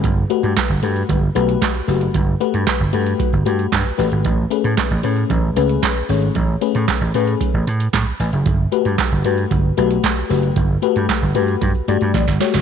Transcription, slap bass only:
0.04 0.23 G1 medium
0.43 0.53 G2 loud
0.70 0.79 G1 medium
0.83 1.02 G2 medium
1.09 1.28 G1 medium
1.35 1.54 B1 medium
1.88 2.07 F#1 medium
2.15 2.34 G1 medium
2.54 2.63 G2 medium
2.80 2.90 G1 loud
2.94 3.13 G2 medium
3.33 3.42 G1 medium
3.46 3.65 G2 loud
3.72 3.82 G2 medium
3.99 4.08 A1 medium
4.12 4.21 G#1 medium
4.25 4.44 A1 medium
4.64 4.74 A2 medium
4.91 5.00 A1 loud
5.04 5.23 A2 loud
5.30 5.49 A1 loud
5.56 5.76 C#2 medium
6.09 6.28 G#1 medium
6.35 6.54 A1 loud
6.75 6.85 A2 loud
7.01 7.11 A1 loud
7.15 7.34 A2 loud
7.54 7.63 A1 medium
7.67 7.86 A2 loud
7.93 8.03 A2 loud
8.20 8.29 A1 medium
8.33 8.42 F#1 medium
8.46 8.65 G1 medium
8.85 8.95 G2 loud
9.12 9.21 G1 loud
9.25 9.44 G2 medium
9.51 9.70 G1 medium
9.78 9.97 B1 medium
10.30 10.49 F#1 medium
10.56 10.76 G1 medium
10.96 11.06 G2 loud
11.22 11.32 G1 loud
11.35 11.54 G2 loud
11.62 11.71 G2 loud
11.88 11.98 G2 medium
12.01 12.11 G2 medium
12.14 12.24 A1 medium
12.28 12.37 G1 medium
12.54 12.62 F#1 medium

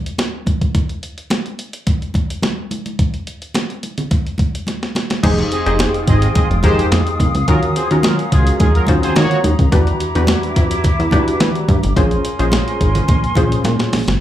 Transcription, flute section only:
5.24 7.46 F4 medium
5.24 9.68 F5 medium
5.24 7.46 G5 medium
5.24 9.68 D#6 medium
7.48 9.70 C#4 medium
7.48 11.92 A#5 medium
9.72 11.94 E4 medium
9.72 11.94 E5 medium
9.72 11.94 D6 medium
11.96 13.96 C#4 medium
11.96 13.90 A#4 medium
11.96 13.98 G#5 medium
11.96 13.96 C6 medium

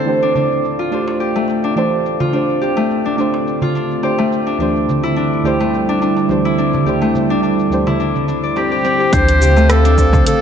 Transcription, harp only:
0.00 1.35 A3 medium
0.00 2.50 C4 medium
0.00 0.22 D4 medium
0.00 0.85 E4 medium
0.00 0.72 G4 medium
0.00 1.98 A4 medium
0.00 1.92 C5 medium
0.23 0.35 D4 medium
0.36 0.91 D4 medium
0.79 2.20 F4 medium
0.92 1.63 D4 medium
1.20 2.61 G4 medium
1.36 2.76 A3 medium
1.64 1.76 D4 medium
1.77 2.33 D4 medium
2.20 3.62 F4 medium
2.33 3.05 D4 medium
2.61 4.03 G4 medium
2.77 4.18 A3 loud
3.05 3.18 D4 medium
3.18 3.75 D4 medium
3.62 5.09 F4 medium
3.75 4.46 D4 medium
4.03 5.45 G4 medium
4.18 5.60 A3 loud
4.47 4.60 D4 medium
4.60 5.16 D4 medium
5.03 6.45 E4 loud
5.16 5.88 D4 medium
5.45 6.86 G4 medium
5.60 7.01 A3 medium
5.89 6.01 D4 medium
6.02 6.58 D4 medium
6.45 7.86 E4 medium
6.58 7.30 D4 medium
6.86 8.71 G4 medium
7.02 9.56 A3 medium
7.30 7.42 D4 medium
7.43 7.99 D4 medium
7.87 10.41 E4 medium
8.00 8.28 D4 medium
8.28 9.12 D4 medium
8.43 10.28 D5 medium
8.56 8.84 C4 medium
8.72 9.00 G4 medium
8.85 10.41 C4 medium
9.00 9.41 G4 medium
9.13 9.84 D4 medium
9.41 10.41 G4 medium
9.56 10.41 A3 loud
9.85 9.97 D4 loud
9.98 10.41 D4 medium

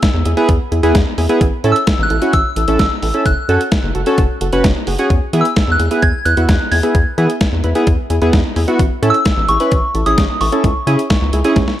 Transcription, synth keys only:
0.26 0.31 E4 medium
0.26 0.31 G#4 loud
0.37 0.49 B3 medium
0.37 0.49 E4 medium
0.37 0.49 G#4 loud
0.72 0.78 E4 medium
0.72 0.78 G#4 medium
0.83 0.95 B3 medium
0.83 0.95 E4 medium
0.83 0.95 G#4 medium
1.18 1.24 E4 medium
1.18 1.24 G#4 loud
1.29 1.41 B3 medium
1.29 1.41 E4 medium
1.29 1.41 G#4 medium
1.64 1.76 C#4 medium
1.64 1.76 E4 medium
1.64 1.76 A4 medium
2.10 2.16 E4 medium
2.10 2.16 A4 medium
2.22 2.33 C#4 medium
2.22 2.33 E4 medium
2.22 2.33 F#4 medium
2.57 2.62 E4 medium
2.57 2.62 A4 medium
2.68 2.80 C#4 medium
2.68 2.80 E4 medium
2.68 2.80 A4 medium
3.03 3.08 E4 medium
3.03 3.08 A4 medium
3.14 3.26 C#4 medium
3.14 3.26 E4 medium
3.14 3.26 A4 medium
3.49 3.60 C#4 medium
3.49 3.60 F#4 medium
3.49 3.60 A4 medium
3.95 4.01 F#4 medium
3.95 4.01 A4 loud
4.07 4.18 C#4 medium
4.07 4.18 F#4 medium
4.07 4.18 A4 medium
4.41 4.47 F#4 medium
4.41 4.47 A4 medium
4.53 4.64 C#4 medium
4.53 4.64 F#4 medium
4.53 4.64 B4 medium
4.87 4.93 F#4 medium
4.87 4.93 G#4 loud
4.99 5.10 C#4 medium
4.99 5.10 F#4 medium
4.99 5.10 G#4 medium
5.33 5.45 B3 medium
5.33 5.45 E4 medium
5.33 5.45 G#4 medium
5.80 5.85 E4 medium
5.80 5.85 G#4 medium
5.91 6.03 B3 medium
5.91 6.03 E4 medium
5.91 6.03 G#4 medium
6.26 6.32 E4 medium
6.26 6.31 B4 medium
6.37 6.49 B3 medium
6.37 6.49 E4 medium
6.37 6.49 F#4 medium
6.72 6.78 E4 medium
6.72 6.78 G#4 medium
6.83 6.95 B3 medium
6.83 6.95 E4 medium
6.83 6.95 G#4 medium
7.18 7.29 B3 medium
7.18 7.29 E4 medium
7.18 7.29 G#4 medium
7.64 7.70 E4 medium
7.64 7.70 B4 loud
7.75 7.87 B3 medium
7.75 7.87 E4 medium
7.75 7.87 G#4 medium
8.10 8.16 E4 medium
8.10 8.16 G#4 loud
8.22 8.33 B3 medium
8.22 8.33 E4 medium
8.22 8.33 G#4 medium
8.56 8.62 E4 medium
8.56 8.62 G#4 loud
8.68 8.79 B3 medium
8.68 8.79 E4 medium
8.68 8.79 F#4 medium
9.03 9.14 C#4 medium
9.03 9.14 E4 medium
9.03 9.14 A4 medium
9.49 9.54 E4 medium
9.49 9.54 G#4 medium
9.60 9.72 C#4 medium
9.60 9.72 E4 medium
9.60 9.72 B4 medium
9.95 10.01 E4 medium
9.95 10.01 A4 medium
10.06 10.18 C#4 medium
10.06 10.18 E4 medium
10.06 10.18 G#4 medium
10.41 10.47 E4 medium
10.41 10.47 A4 medium
10.52 10.64 C#4 medium
10.52 10.64 E4 medium
10.52 10.64 A4 medium
10.87 10.99 C#4 medium
10.87 10.99 E4 medium
10.87 10.99 G#4 medium
11.33 11.39 E4 medium
11.33 11.39 G#4 loud
11.45 11.56 C#4 medium
11.45 11.56 E4 medium
11.45 11.56 G#4 medium

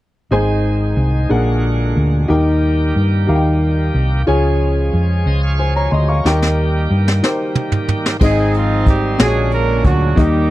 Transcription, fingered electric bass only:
0.31 0.93 G#1 medium
0.97 1.28 C2 medium
1.30 1.92 A#1 medium
1.96 2.27 D2 medium
2.30 2.91 D#2 medium
2.96 3.26 G2 medium
3.29 3.90 D#2 medium
3.94 4.24 C2 medium
4.28 4.89 C#2 medium
4.93 5.23 F2 medium
5.26 5.87 C#2 medium
5.92 6.22 D2 medium
6.25 6.86 D#2 medium
6.90 7.20 G2 medium
8.21 9.15 G#1 medium
9.20 9.81 A#1 medium
9.85 10.15 D2 medium
10.17 10.50 D#2 medium

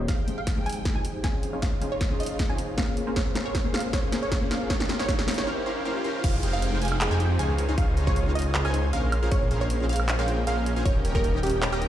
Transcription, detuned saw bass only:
6.24 6.41 F1 loud
6.43 6.71 F1 loud
6.72 7.09 F1 loud
7.11 7.37 F2 loud
7.39 7.67 C#2 loud
7.69 7.76 C#2 loud
7.78 7.95 C#2 loud
7.97 8.24 C#2 loud
8.26 8.63 C#2 loud
8.65 8.91 C#2 loud
8.93 9.21 A#1 loud
9.23 9.30 A#1 loud
9.32 9.49 A#1 loud
9.51 9.78 A#1 loud
9.80 10.17 A#1 loud
10.19 10.45 A#1 loud
10.47 10.75 A#1 loud
10.77 10.84 A#1 loud
10.86 11.03 D#1 loud
11.05 11.32 D#1 loud
11.34 11.71 D#1 loud
11.73 11.88 D#1 loud

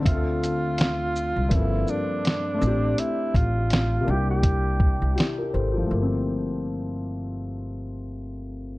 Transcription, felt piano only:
0.00 1.45 D3 medium
0.00 1.47 C4 medium
0.05 1.50 F4 medium
0.05 1.49 E5 medium
0.11 1.52 A4 medium
1.49 2.60 G2 medium
1.49 2.60 A#3 medium
1.49 2.57 C4 medium
1.49 2.61 D4 medium
1.54 2.62 F3 medium
1.54 2.63 A4 medium
2.54 4.01 A3 medium
2.54 4.03 C4 medium
2.63 4.05 D4 medium
2.67 4.07 G4 medium
4.01 5.83 C3 medium
4.01 5.85 A#3 medium
4.07 5.86 D4 medium
4.07 4.80 E4 medium
4.13 4.82 G4 medium
5.16 5.36 E4 medium
5.16 5.36 G4 medium
5.38 5.53 G4 medium
5.38 5.53 A#4 medium
5.53 5.73 A4 medium
5.53 5.73 C5 medium
5.74 6.09 E4 soft
5.74 6.09 G4 medium
5.78 8.78 F3 medium
5.86 8.78 A3 medium
5.94 8.78 A#3 medium
6.02 8.78 C4 medium

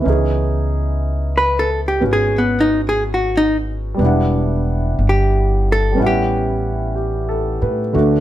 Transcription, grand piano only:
0.00 3.97 E3 soft
0.00 1.99 B3 soft
0.00 2.00 C#4 soft
0.07 4.01 D#4 soft
0.07 4.03 G#4 soft
2.00 3.96 B3 soft
2.00 4.00 C#4 soft
2.00 4.01 F#4 soft
3.94 5.90 G3 soft
3.94 5.93 B3 soft
4.00 5.97 D4 soft
4.00 5.98 E4 soft
4.06 6.00 F#5 soft
5.91 7.91 G3 soft
5.91 7.93 B3 soft
5.97 7.94 C#4 soft
5.97 7.95 E4 soft
6.02 7.97 F#5 soft
6.96 7.58 G4 soft
7.29 7.80 A4 soft
7.62 8.13 B4 soft
7.93 8.20 D3 soft
7.93 8.20 A3 soft
7.93 8.20 D4 soft
7.93 8.20 F#4 soft

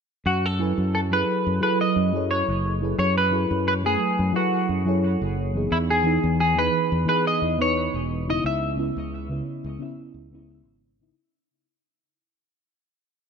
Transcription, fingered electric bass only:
0.26 0.71 F#2 medium
0.78 1.22 F#2 medium
1.47 1.59 F#2 medium
1.96 2.42 F#2 medium
2.48 2.93 F#1 medium
2.98 3.44 F#2 medium
3.51 3.95 F#2 medium
4.19 4.31 F#2 medium
4.69 5.15 F#2 medium
5.21 5.65 F#1 medium
5.72 6.17 E2 medium
6.24 6.68 E2 medium
6.92 7.04 E2 medium
7.42 7.87 E2 medium
7.94 8.38 E1 medium
8.44 8.90 C#2 medium
8.97 9.40 C#2 loud
9.64 9.77 C#2 medium
10.14 10.67 C#2 medium
10.66 11.11 G#1 medium

